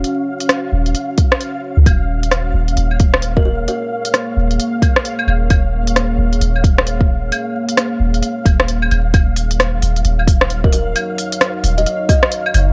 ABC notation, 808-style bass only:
X:1
M:4/4
L:1/16
Q:"Swing 16ths" 1/4=132
K:Ebm
V:1 name="808-style bass" clef=bass
z6 E,,,2 z6 z D,, | E,,,6 E,,,2 E,,,8 | z6 E,,,2 z6 E,,,2 | E,,,6 E,,,2 E,,,8 |
z6 E,,,2 z2 E,,,4 E,,,2 | E,,,6 E,,,2 E,,,8 | z6 E,,,2 z6 G,,,2 |]